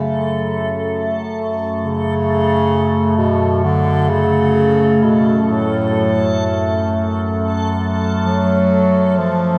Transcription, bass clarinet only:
0.00 0.87 C#3 medium
1.81 3.16 C#3 medium
3.17 3.65 B2 medium
3.64 4.12 D3 medium
4.10 5.05 C#3 medium
5.04 5.42 B2 medium
5.43 5.52 B2 soft
5.51 6.89 A2 medium
8.25 9.20 F#3 medium
9.18 9.58 F3 loud

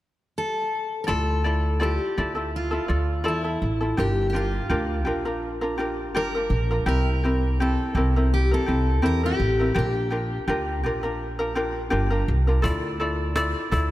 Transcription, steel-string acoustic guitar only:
0.38 1.03 A4 medium
1.04 1.82 A4 medium
1.04 1.07 A#4 medium
1.83 2.50 G4 medium
2.56 3.28 F4 medium
3.28 4.01 E4 medium
4.00 4.28 G4 medium
4.30 4.35 G4 medium
4.36 6.21 F4 medium
6.17 6.87 A#4 medium
6.88 7.62 A#4 medium
7.62 8.33 A4 medium
8.34 8.53 G4 medium
8.54 9.05 A4 medium
9.06 9.25 A#4 medium
9.26 9.77 G4 medium
9.79 12.26 G4 medium

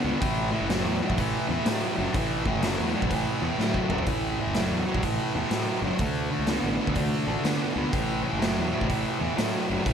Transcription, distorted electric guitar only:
0.05 0.20 D3 medium
0.05 0.20 B3 medium
0.20 0.49 A2 medium
0.20 0.49 E3 loud
0.52 0.68 A2 medium
0.52 0.68 E3 medium
0.69 0.98 A2 medium
0.69 0.98 F#3 medium
1.01 1.16 A2 medium
1.01 1.17 F#3 medium
1.17 1.46 A2 medium
1.17 1.46 E3 medium
1.49 1.64 A2 medium
1.49 1.65 E3 medium
1.66 1.94 A2 medium
1.66 1.94 F#3 loud
1.98 2.13 A2 medium
1.98 2.13 F#3 medium
2.15 2.43 A2 medium
2.15 2.43 E3 loud
2.46 2.61 A2 medium
2.46 2.61 E3 medium
2.63 2.91 A2 medium
2.63 2.91 F#3 loud
2.94 3.09 A2 medium
2.94 3.09 F#3 medium
3.11 3.39 A2 medium
3.11 3.39 E3 medium
3.41 3.57 A2 medium
3.41 3.57 E3 medium
3.59 3.87 A2 medium
3.59 3.88 F#3 loud
3.90 4.05 A2 medium
3.90 4.05 F#3 medium
4.07 4.35 A2 medium
4.07 4.36 E3 loud
4.39 4.54 A2 medium
4.39 4.54 E3 medium
4.55 4.84 A2 medium
4.55 4.84 F#3 medium
4.87 5.02 A2 medium
4.87 5.02 F#3 medium
5.04 5.32 A2 medium
5.04 5.32 E3 medium
5.36 5.51 A2 medium
5.36 5.50 E3 medium
5.52 5.80 A2 medium
5.52 5.80 F#3 medium
5.84 5.99 A2 medium
5.84 5.99 F#3 medium
6.00 6.28 D3 medium
6.00 6.29 A3 loud
6.31 6.46 D3 medium
6.31 6.47 A3 medium
6.48 6.76 D3 medium
6.48 6.77 B3 medium
6.79 6.95 D3 medium
6.79 6.95 B3 medium
6.96 7.25 D3 medium
6.96 7.25 A3 medium
7.27 7.43 D3 medium
7.27 7.43 A3 medium
7.44 7.73 D3 medium
7.44 7.73 B3 medium
7.75 7.91 D3 medium
7.75 7.91 B3 medium
7.91 8.20 A2 medium
7.91 8.21 E3 medium
8.22 8.38 A2 medium
8.22 8.39 E3 medium
8.39 8.68 A2 medium
8.39 8.69 F#3 medium
8.71 8.87 A2 medium
8.71 8.87 F#3 medium
8.89 9.18 A2 medium
8.89 9.18 E3 medium
9.20 9.35 A2 medium
9.20 9.36 E3 medium
9.37 9.65 A2 medium
9.37 9.65 F#3 medium
9.68 9.84 A2 medium
9.68 9.84 F#3 medium
9.86 9.93 A2 medium
9.86 9.93 E3 medium

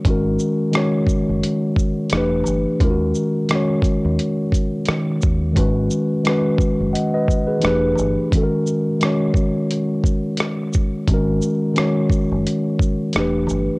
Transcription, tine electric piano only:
0.04 0.62 D#3 medium
0.04 0.63 G#3 medium
0.04 0.63 C#4 medium
0.09 0.64 F#4 medium
0.09 0.65 A#4 medium
0.71 1.87 D#3 medium
0.71 1.88 G#3 medium
0.71 1.89 C#4 medium
0.75 1.89 F#4 medium
0.75 1.90 C#5 medium
2.11 2.69 E3 medium
2.11 2.69 A3 medium
2.11 2.70 D4 medium
2.16 2.71 G4 medium
2.16 2.72 B4 loud
2.79 3.37 D#3 medium
2.79 3.38 G#3 medium
2.79 3.39 C#4 medium
2.84 2.89 F4 medium
2.84 3.40 A#4 medium
2.90 3.43 F#4 medium
3.50 4.64 D#3 medium
3.50 4.65 G#3 medium
3.50 4.66 C#4 medium
3.54 4.67 F#4 medium
3.54 4.67 C#5 medium
5.53 6.12 D#3 medium
5.53 6.13 G#3 medium
5.53 6.13 C#4 medium
5.57 6.14 F#4 medium
5.57 6.15 B4 medium
6.23 7.39 D#3 medium
6.23 7.40 G#3 medium
6.23 7.40 C#4 medium
6.27 7.41 F#4 medium
6.27 6.96 B4 medium
6.93 7.13 D#5 medium
6.93 7.12 F#5 medium
7.14 7.46 B4 medium
7.14 7.47 D#5 medium
7.47 7.81 G#4 medium
7.47 7.65 B4 medium
7.60 8.19 E3 medium
7.60 8.20 A3 medium
7.60 8.20 D4 medium
7.64 8.21 G4 medium
7.64 8.22 B4 medium
8.31 8.89 D#3 medium
8.31 8.90 G#3 medium
8.31 8.90 C#4 medium
8.36 8.91 F#4 medium
8.36 8.42 A4 medium
8.43 8.95 A#4 medium
8.99 10.15 D#3 medium
8.99 10.16 G#3 medium
8.99 10.17 C#4 medium
9.04 10.17 F#4 medium
9.04 10.18 C#5 medium
11.08 11.65 D#3 medium
11.08 11.66 G#3 medium
11.08 11.67 C#4 medium
11.12 11.68 F#4 medium
11.12 11.68 A#4 medium
11.73 12.90 D#3 medium
11.73 12.91 G#3 medium
11.73 12.91 C#4 medium
11.78 12.92 F#4 medium
11.78 12.93 C#5 medium
13.14 13.72 E3 medium
13.14 13.72 A3 medium
13.14 13.73 D4 medium
13.18 13.74 G4 medium
13.18 13.75 B4 medium

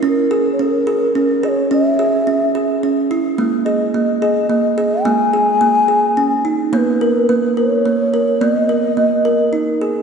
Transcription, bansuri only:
0.07 0.51 A#4 medium
0.52 0.64 C#5 medium
0.62 1.16 A#4 medium
1.17 1.46 A#4 medium
1.45 1.72 C#5 medium
1.45 1.49 D#5 medium
1.72 2.79 E5 medium
3.65 4.17 D#5 medium
4.21 4.47 D#5 medium
4.50 5.05 D#5 medium
5.04 6.44 G#5 medium
6.73 6.78 C#5 medium
6.77 7.25 B4 medium
7.29 7.35 B4 medium
7.56 8.43 C#5 medium
8.41 8.53 D5 medium
8.53 9.53 D#5 medium

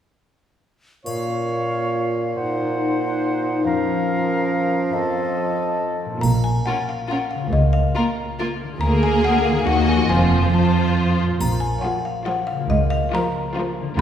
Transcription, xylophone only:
6.21 6.42 A#5 medium
6.44 6.64 G#5 medium
6.66 6.86 F#5 medium
6.89 7.08 F5 medium
7.11 7.30 F#5 medium
7.31 7.51 F5 soft
7.53 7.73 D#5 medium
7.73 7.94 F5 medium
7.96 8.56 A#5 medium
8.81 9.01 A#5 medium
9.03 9.23 G#5 medium
9.25 9.44 F#5 medium
9.45 9.65 F5 medium
9.67 9.87 F#5 medium
9.89 10.08 G#5 medium
10.09 10.50 G#5 medium
10.54 11.15 A5 soft
11.41 11.61 A#5 medium
11.60 11.81 G#5 medium
11.82 12.03 F#5 medium
12.05 12.25 F5 medium
12.26 12.47 F#5 medium
12.47 12.68 F5 medium
12.70 12.90 D#5 medium
12.90 13.11 F5 medium
13.15 13.75 A#5 medium

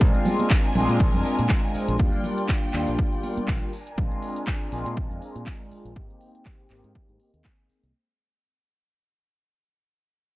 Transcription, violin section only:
0.01 1.97 D4 medium
0.01 1.97 A#4 medium
0.01 1.97 G#5 medium
1.99 3.71 D5 medium
1.99 3.71 G5 medium
3.73 5.94 D4 medium
3.73 5.94 A#4 medium
3.73 5.94 G#5 medium
5.96 7.93 G#3 medium
5.96 7.92 C4 medium
5.96 7.93 G5 medium

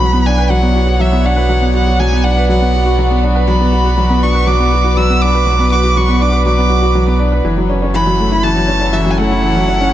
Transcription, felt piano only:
0.00 0.12 F#3 medium
0.00 0.13 B3 medium
0.00 0.75 F#4 medium
0.13 0.25 B3 medium
0.26 0.37 D4 medium
0.38 0.50 B4 medium
0.50 0.62 F#3 medium
0.62 0.74 B3 medium
0.75 0.85 F#4 medium
0.87 0.94 F#4 medium
1.00 1.11 F#3 medium
1.12 1.24 B3 medium
1.24 1.36 D4 medium
1.36 1.48 B4 medium
1.49 1.61 F#3 medium
1.61 1.73 B3 medium
1.74 1.85 F#4 medium
1.87 1.94 F#4 medium
2.00 2.11 F#3 medium
2.12 2.23 B3 medium
2.24 2.36 D4 medium
2.36 2.48 B4 medium
2.49 2.60 F#3 medium
2.61 2.73 B3 medium
2.74 2.84 F#4 medium
2.86 2.93 F#4 medium
2.98 3.10 F#3 medium
3.10 3.22 B3 medium
3.23 3.34 D4 medium
3.35 3.47 B4 medium
3.47 3.59 F#3 medium
3.60 3.72 B3 medium
3.72 3.83 F#4 medium
3.84 3.92 F#4 medium
3.97 4.09 F#3 medium
4.09 4.21 B3 medium
4.22 4.34 D4 medium
4.35 4.46 B4 medium
4.46 4.58 F#3 medium
4.59 4.71 B3 medium
4.72 4.83 F#4 medium
4.84 4.91 F#4 medium
4.97 5.08 F#3 medium
5.10 5.21 B3 medium
5.22 5.33 D4 medium
5.34 5.46 B4 medium
5.46 5.58 F#3 medium
5.59 5.70 B3 medium
5.71 5.82 F#4 medium
5.84 5.90 F#4 medium
5.96 6.08 F#3 medium
6.08 6.20 B3 medium
6.20 6.32 D4 medium
6.33 6.45 B4 medium
6.46 6.57 F#3 medium
6.58 6.70 B3 medium
6.70 6.81 F#4 medium
6.82 6.89 F#4 medium
6.95 7.06 F#3 medium
7.07 7.19 B3 medium
7.19 7.31 D4 medium
7.32 7.44 B4 medium
7.45 7.56 E3 medium
7.57 7.69 F#3 medium
7.69 7.81 C#4 medium
7.82 7.89 C#4 medium
7.94 8.06 E3 medium
8.07 8.18 F#3 medium
8.19 8.31 A3 medium
8.31 8.43 E4 medium
8.44 8.55 E3 medium
8.56 8.68 F#3 medium
8.68 8.79 C#4 medium
8.81 8.88 C#4 medium
8.93 9.05 E3 medium
9.06 9.17 F#3 medium
9.18 9.30 A3 medium
9.31 9.42 E4 medium
9.43 9.55 E3 medium
9.55 9.67 F#3 medium
9.68 9.79 C#4 medium
9.80 9.87 C#4 medium

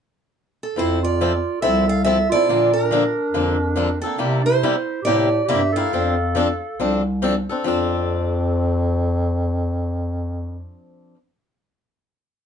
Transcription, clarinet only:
0.78 1.02 E4 medium
1.03 1.58 F4 medium
1.61 1.86 A4 medium
1.87 2.03 A4 medium
2.04 2.29 A4 medium
2.30 2.71 F4 medium
2.74 4.00 D4 medium
4.01 4.41 C4 medium
4.42 5.00 E4 medium
5.02 5.44 G4 medium
5.44 5.72 G4 medium
5.73 7.00 A4 medium

